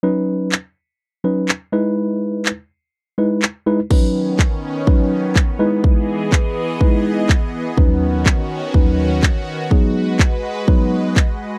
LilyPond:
<<
  \new Staff \with { instrumentName = "Tine electric piano" } { \time 4/4 \key b \major \tempo 4 = 124 <fis cis' dis' b'>4 r4. <fis cis' dis' b'>8 r8 <gis dis' e' b'>8~ | <gis dis' e' b'>4 r4. <gis dis' e' b'>8 r8 <gis dis' e' b'>16 r16 | <fis cis' dis' b'>4 r4 <fis cis' dis' b'>4 r8 <gis dis' e' b'>8~ | <gis dis' e' b'>4 r4 <gis dis' e' b'>4 r4 |
<dis, fis cis' dis' b'>4 r4 <dis, fis cis' dis' b'>4 r4 | <fis b dis' gis'>4 r4 <fis b dis' b'>4 r4 | }
  \new Staff \with { instrumentName = "Supersaw synth" } { \time 4/4 \key b \major r1 | r1 | <dis b cis'>2.~ <dis b cis'>8 <e gis' dis''>8~ | <e gis' dis''>1 |
<dis cis' fis'>1 | <gis b' dis''>1 | }
  \new DrumStaff \with { instrumentName = "Drums" } \drummode { \time 4/4 r4 hc4 r4 hc4 | r4 hc4 r4 hc4 | <cymc bd>4 <hc bd>4 bd4 <hc bd>4 | bd4 <hc bd>4 bd4 <hc bd>4 |
bd4 <hc bd>4 bd4 <hc bd>4 | bd4 <hc bd>4 bd4 <hc bd>4 | }
>>